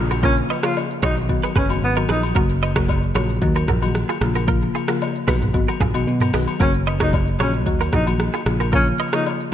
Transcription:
Already playing: A#1 C#3 F3 A#3 F4, downlifter
0.11 F#4 A#4, high agogo, shaker
0.23 C#3 F3 A#3 C#4 F4 A#4, kick, shaker
0.37 shaker
0.50 B4 D#5, high agogo, shaker
0.63 C#3 F3 A#3 F4 A#4 C#5, cross-stick, shaker
0.76 high agogo, low woodblock, shaker
0.90 shaker
1.03 B1 D#3 F#3 B3 D#4 F#4 C#5, kick, cross-stick, high agogo, shaker
1.17 shaker
1.29 D#3 F#3 B3 F#4, kick, shaker
1.44 G#4 B4, high agogo, shaker
1.56 F#1 C#4 G#4 B4, kick, cross-stick, mid tom, shaker
1.69 D#3 F#3 B3 F#4, high agogo, shaker
1.82 G#1 B3, shaker
1.96 D#3 F#3 B3 F#4 A#4, high agogo, shaker
2.09 A#1 D#4 G#4 B4, cross-stick, shaker
2.23 high agogo, shaker
2.35 F#1 C#3 F#3 A#3 F#4 A#4, kick, shaker
2.49 shaker
2.62 B4 D#5, high agogo, shaker
2.75 C#3 F#3 A#3 F#4 A#4 C#5, kick, cross-stick, shaker
2.89 kick, high agogo, low woodblock, shaker
3.03 shaker
3.15 A#1 C#3 F#3 A#3 F#4 A#4 C#5, cross-stick, high agogo, shaker
3.29 shaker
3.42 D#2 D#3 F#3 A#3 F#4, kick, shaker
3.56 F#4 A#4, high agogo, shaker
3.68 A#1 F#4 A#4, kick, cross-stick, mid tom, shaker
3.82 D#3 F#3 A#3 F#4, high agogo, shaker
3.95 cross-stick, shaker
4.09 F4 G#4, high agogo, shaker
4.21 A#1 C#3 F3 A#3 F4, cross-stick, shaker
4.35 F#4 A#4, high agogo, shaker
4.48 C#3 F3 A#3 F4 A#4, kick, shaker
4.61 shaker
4.75 F4 G#4, high agogo, shaker
4.88 C#3 F3 A#3 F4 F#4 A#4, cross-stick, shaker
5.01 high agogo, low woodblock, shaker
5.15 shaker
5.27 B1 D#3 F#3 B3 F#4 B4, kick, cross-stick, open hi-hat, high agogo, shaker
5.42 mid tom, shaker
5.54 G#1 D#3 F#3 B3 F#4, kick, shaker
5.68 F#4 A#4, high agogo, shaker
5.80 A#1 F4 G#4, kick, cross-stick, mid tom, shaker
5.94 B1 D#3 F#3 B3 F#4, high agogo, shaker
6.07 B2, shaker
6.20 F#4 A#4, mid tom, high agogo, shaker
6.33 B1 D#3 F#3 B3 F#4 G#4 B4, cross-stick, open hi-hat, shaker
6.48 high agogo, shaker
6.60 F#1 C#3 F#3 A#3 C#4 F#4 A#4, kick, shaker
6.74 shaker
6.87 B4 D#5, high agogo, shaker
7.00 C#3 F#3 A#3 D#4 F#4 A#4 C#5, kick, cross-stick, shaker
7.13 kick, high agogo, low woodblock, shaker
7.27 shaker
7.39 A#1 C#3 F#3 A#3 C#4 F#4 A#4 C#5, cross-stick, high agogo, shaker
7.54 shaker
7.66 D#2 D#3 F#3 A#3 F#4, kick, shaker
7.81 F#4 A#4, high agogo, shaker
7.93 A#1 D#4 F#4 A#4, kick, cross-stick, mid tom, shaker
8.06 D#3 F#3 A#3 F#4, high agogo, shaker
8.20 cross-stick, shaker
8.34 F4 G#4, high agogo, shaker
8.46 A#1 C#3 F3 A#3 F4, cross-stick, shaker
8.60 F#4 A#4, high agogo, shaker
8.72 C#3 F3 A#3 C#4 F4 A#4, kick, shaker
8.86 shaker
9.00 B4 D#5, high agogo, shaker
9.13 C#3 F3 A#3 D#4 F4 A#4 C#5, cross-stick, shaker
9.26 high agogo, low woodblock, shaker
9.40 shaker

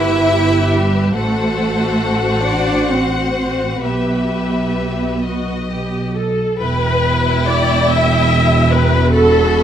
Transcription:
Already playing: G1 E4 G4 B4 E5
0.71 G3 G4
1.14 A1 A3 F#4 A4 C5 F#5
2.44 D4 D5
2.90 C4 C5
3.81 B1 B3 G4 B4
3.86 E5
5.23 F#4 D#5
5.69 G4
6.15 A4
6.60 E1 E2 E4 B4 G5
7.46 D5
7.89 E5
8.71 B4
9.12 F#4 A4 B5

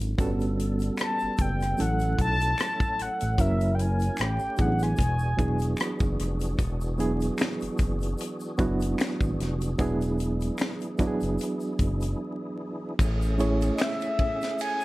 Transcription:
Already playing: G#1 F#3 C4 D4 E4 A4
0.01 closed hi-hat, shaker
0.18 G1 G3 B3 C#4 F#4 A4, kick, closed hi-hat, shaker
0.40 closed hi-hat, shaker
0.59 closed hi-hat
0.80 closed hi-hat, shaker
0.97 A5, finger snap, cross-stick, closed hi-hat, shaker
1.19 F#1, shaker
1.38 F#1 G5, kick, closed hi-hat, shaker
1.60 cross-stick, closed hi-hat, shaker
1.77 A1 F#3 A3 C#4 E4 A4 F#5, closed hi-hat, shaker
1.99 closed hi-hat, shaker
2.19 B1 A5, kick, closed hi-hat
2.40 closed hi-hat, shaker
2.58 finger snap, cross-stick, closed hi-hat, shaker
2.80 kick, shaker
2.99 A1 F#5, cross-stick, closed hi-hat
3.21 A1, closed hi-hat, shaker
3.37 F#1 F#3 A#3 C#4 E4 A#4 E5, kick, closed hi-hat, shaker
3.61 closed hi-hat, shaker
3.75 G5
3.79 G#5, closed hi-hat
4.00 closed hi-hat, shaker
4.17 A1 A3 G4 G5, finger snap, closed hi-hat, shaker
4.21 cross-stick
4.39 A1, shaker
4.57 A1 F#3 B3 D4 E4 G#4, kick, closed hi-hat, shaker
4.61 F#5
4.79 G#5, cross-stick, closed hi-hat, shaker
4.97 E1 E3 D4 F#4 G#4, kick, closed hi-hat, shaker
5.19 shaker
5.37 E1 F#3 B3 D4 E4 G#4, kick, closed hi-hat
5.59 closed hi-hat, shaker
5.77 finger snap, cross-stick, closed hi-hat, shaker
6.00 F#1, kick, shaker
6.19 F1, cross-stick, closed hi-hat
6.40 closed hi-hat, shaker
6.57 E1 E3 D4 F#4 G#4, kick, closed hi-hat, shaker
6.81 shaker
6.98 F#3 B3 D4 E4 G#4, closed hi-hat, shaker
7.21 closed hi-hat, shaker
7.38 finger snap, snare, closed hi-hat, shaker
7.42 finger snap
7.60 F#1, closed hi-hat, shaker
7.78 F#1, kick, closed hi-hat, shaker
8.01 closed hi-hat, shaker
8.18 closed hi-hat, shaker
8.40 shaker
8.58 F#1 F#3 B3 D4 E4 F#4, kick, closed hi-hat, shaker
8.80 closed hi-hat, shaker
8.98 finger snap, snare, closed hi-hat, shaker
9.02 finger snap
9.21 G#1, kick, shaker
9.40 F1, snare, closed hi-hat
9.61 closed hi-hat, shaker
9.78 E1 F#3 B3 D4 E4 G#4, kick, closed hi-hat, shaker
10.01 closed hi-hat, shaker
10.18 closed hi-hat, shaker
10.41 closed hi-hat, shaker
10.58 finger snap, snare, closed hi-hat, shaker
10.62 finger snap
10.80 closed hi-hat, shaker
10.98 F#1 F#3 B3 D4 E4 F#4, kick, closed hi-hat, shaker
11.07 G#4
11.21 F#1, closed hi-hat, shaker
11.38 closed hi-hat, shaker
11.60 shaker
11.79 F#1, kick, closed hi-hat, shaker
12.01 closed hi-hat, shaker
12.99 A1 A3 C#4 G#4, kick, ride, shaker
13.22 shaker
13.38 A3 C#4 E4 G#4 C#5, ride, shaker
13.61 ride, shaker
13.75 D#5, finger snap, shaker
13.79 E5, finger snap, snare, ride
14.00 ride, shaker
14.19 kick, ride
14.42 snare, ride, shaker
14.59 G#5, ride, shaker
14.81 shaker

